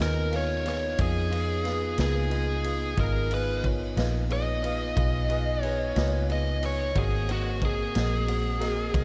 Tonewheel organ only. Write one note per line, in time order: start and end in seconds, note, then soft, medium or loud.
0.00 2.94 B3 medium
0.00 2.94 D#4 medium
0.00 2.94 F4 medium
2.99 6.92 B3 medium
2.99 6.92 D#4 medium
2.99 6.92 F4 medium
6.96 9.04 A#3 medium
6.96 9.04 C4 medium
6.96 9.04 F#4 medium